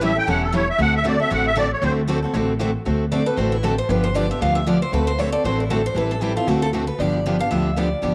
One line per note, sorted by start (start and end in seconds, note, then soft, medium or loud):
0.00 0.17 A1 medium
0.00 0.11 E3 medium
0.00 0.11 G3 loud
0.00 0.12 C#4 medium
0.00 0.12 E4 medium
0.00 0.12 A4 medium
0.00 0.17 E5 medium
0.15 0.26 C#4 medium
0.15 0.27 E4 medium
0.15 0.27 A4 medium
0.15 0.28 G5 loud
0.27 0.69 E1 medium
0.27 0.45 E3 medium
0.27 0.45 G3 medium
0.27 0.45 C#4 medium
0.27 0.46 E4 medium
0.27 0.45 A4 medium
0.27 0.42 F#5 medium
0.43 0.54 A4 medium
0.52 0.63 E3 loud
0.52 0.63 G3 loud
0.52 0.63 C#4 medium
0.52 0.63 E4 loud
0.52 0.63 A4 loud
0.52 0.68 C#5 medium
0.70 0.80 E5 medium
0.78 1.20 D2 loud
0.78 0.97 D3 medium
0.78 0.97 A3 medium
0.78 0.97 C4 medium
0.78 0.97 F#4 medium
0.78 0.97 A4 medium
0.78 0.94 F#5 loud
0.96 1.06 E5 loud
1.04 1.14 D3 medium
1.04 1.15 A3 medium
1.04 1.15 C4 loud
1.04 1.15 F#4 loud
1.04 1.15 A4 medium
1.04 1.20 D5 medium
1.20 1.30 C4 medium
1.20 1.31 F#4 soft
1.20 1.30 A4 medium
1.20 1.31 E5 loud
1.30 1.72 A1 medium
1.30 1.49 D3 medium
1.30 1.49 A3 medium
1.30 1.49 C4 medium
1.30 1.49 F#4 medium
1.30 1.49 A4 medium
1.30 1.46 F#5 loud
1.47 1.57 E5 loud
1.55 1.66 D3 medium
1.55 1.66 A3 loud
1.55 1.66 C4 loud
1.55 1.67 F#4 loud
1.55 1.67 A4 loud
1.55 1.71 D5 loud
1.73 1.83 C#5 medium
1.82 2.23 D2 loud
1.82 2.00 D3 medium
1.82 2.01 A3 medium
1.82 2.01 C4 medium
1.82 2.01 F#4 medium
1.82 2.01 A4 medium
1.82 1.92 C5 medium
2.07 2.18 D3 medium
2.07 2.18 A3 medium
2.07 2.18 C4 medium
2.07 2.18 F#4 loud
2.07 2.19 A4 loud
2.22 2.34 C4 medium
2.22 2.34 F#4 medium
2.22 2.34 A4 medium
2.33 2.75 A1 loud
2.33 2.52 D3 medium
2.33 2.52 A3 medium
2.33 2.52 C4 medium
2.33 2.53 F#4 medium
2.33 2.53 A4 medium
2.60 2.70 D3 medium
2.60 2.70 A3 loud
2.60 2.70 C4 medium
2.60 2.71 F#4 loud
2.60 2.71 A4 loud
2.85 3.27 D2 medium
2.85 3.04 D3 medium
2.85 3.04 A3 medium
2.85 3.04 C4 medium
2.85 3.04 F#4 medium
2.85 3.04 A4 medium
3.12 3.22 D3 medium
3.12 3.22 A3 medium
3.12 3.22 C4 medium
3.12 3.22 F#4 medium
3.12 3.23 A4 loud
3.12 3.26 D5 medium
3.26 3.37 C4 soft
3.26 3.37 F#4 medium
3.26 3.37 A4 medium
3.26 3.37 B4 medium
3.37 3.79 A1 medium
3.37 3.55 D3 medium
3.37 3.55 A3 medium
3.37 3.56 C4 medium
3.37 3.56 F#4 medium
3.37 3.56 A4 medium
3.37 3.51 C5 medium
3.52 3.63 E4 medium
3.63 3.73 D3 medium
3.63 3.73 A3 medium
3.63 3.74 C4 loud
3.63 3.74 F#4 medium
3.63 3.78 A4 medium
3.63 3.74 A4 loud
3.78 3.89 C5 loud
3.89 4.30 G1 loud
3.89 4.07 D3 medium
3.89 4.07 F3 medium
3.89 4.07 B3 medium
3.89 4.08 D4 medium
3.89 4.08 G4 medium
3.89 4.04 B4 medium
4.04 4.15 C5 medium
4.14 4.25 D3 medium
4.14 4.25 F3 medium
4.14 4.25 B3 medium
4.14 4.25 D4 medium
4.14 4.25 G4 medium
4.14 4.29 D5 medium
4.30 4.41 B3 soft
4.30 4.41 D4 medium
4.30 4.41 G4 medium
4.30 4.41 E5 medium
4.41 4.82 D2 medium
4.41 4.59 D3 medium
4.41 4.60 F3 medium
4.41 4.60 B3 medium
4.41 4.60 D4 medium
4.41 4.60 G4 medium
4.41 4.55 F5 medium
4.55 4.66 E5 loud
4.66 4.77 D3 medium
4.66 4.77 F3 loud
4.66 4.77 B3 loud
4.66 4.77 D4 loud
4.66 4.77 G4 loud
4.66 4.81 D5 medium
4.82 4.93 C5 medium
4.92 5.34 D2 loud
4.92 5.11 D3 medium
4.92 5.11 A3 medium
4.92 5.11 C4 medium
4.92 5.11 F#4 medium
4.92 5.11 A4 medium
4.92 5.07 B4 medium
5.07 5.19 C5 medium
5.19 5.29 D3 medium
5.19 5.29 A3 medium
5.19 5.29 C4 medium
5.19 5.29 F#4 medium
5.19 5.29 A4 medium
5.19 5.32 C#5 medium
5.32 5.44 C4 soft
5.32 5.44 F#4 medium
5.32 5.44 A4 medium
5.32 5.44 D5 loud
5.44 5.86 A1 medium
5.44 5.62 D3 medium
5.44 5.63 A3 medium
5.44 5.63 C4 medium
5.44 5.63 F#4 medium
5.44 5.63 A4 medium
5.44 5.59 C5 medium
5.60 5.71 E4 medium
5.70 5.80 D3 loud
5.70 5.80 A3 medium
5.70 5.81 C4 loud
5.70 5.81 F#4 loud
5.70 5.84 A4 medium
5.70 5.81 A4 loud
5.86 5.96 C5 loud
5.95 6.37 A1 medium
5.95 6.13 E3 medium
5.95 6.14 G3 medium
5.95 6.14 C4 medium
5.95 6.14 E4 medium
5.95 6.14 A4 medium
5.95 6.11 B4 medium
6.11 6.22 A4 medium
6.21 6.31 E3 medium
6.21 6.32 G3 medium
6.21 6.32 C4 medium
6.21 6.32 E4 medium
6.21 6.36 G4 medium
6.21 6.32 A4 loud
6.36 6.47 C4 soft
6.36 6.48 E4 medium
6.36 6.48 F4 medium
6.36 6.47 A4 medium
6.47 6.89 D2 loud
6.47 6.66 D3 medium
6.47 6.66 A3 medium
6.47 6.66 C4 medium
6.47 6.62 F#4 medium
6.47 6.66 F#4 medium
6.47 6.66 A4 medium
6.62 6.69 A4 loud
6.73 6.83 D3 medium
6.73 6.83 A3 medium
6.73 6.84 C4 medium
6.73 6.84 F#4 loud
6.73 6.84 A4 medium
6.87 7.00 B4 medium
6.99 7.40 G1 loud
6.99 7.18 D3 medium
6.99 7.18 F3 medium
6.99 7.18 B3 medium
6.99 7.18 D4 medium
6.99 7.18 G4 medium
6.99 7.40 D5 medium
7.26 7.35 D3 medium
7.26 7.36 F3 medium
7.26 7.36 B3 loud
7.26 7.36 D4 medium
7.26 7.36 G4 medium
7.39 7.51 B3 soft
7.39 7.51 D4 medium
7.39 7.50 G4 medium
7.39 7.50 F5 loud
7.51 7.92 D2 medium
7.51 7.69 D3 medium
7.51 7.69 F3 medium
7.51 7.69 B3 medium
7.51 7.70 D4 medium
7.51 7.70 G4 medium
7.51 7.75 E5 medium
7.76 7.87 D3 medium
7.76 7.87 F3 loud
7.76 7.87 B3 medium
7.76 7.87 D4 loud
7.76 7.87 G4 loud
7.76 8.15 D5 medium
8.02 8.15 G1 medium
8.02 8.15 D3 medium
8.02 8.15 F3 medium
8.02 8.15 B3 medium
8.02 8.15 D4 medium
8.02 8.15 G4 medium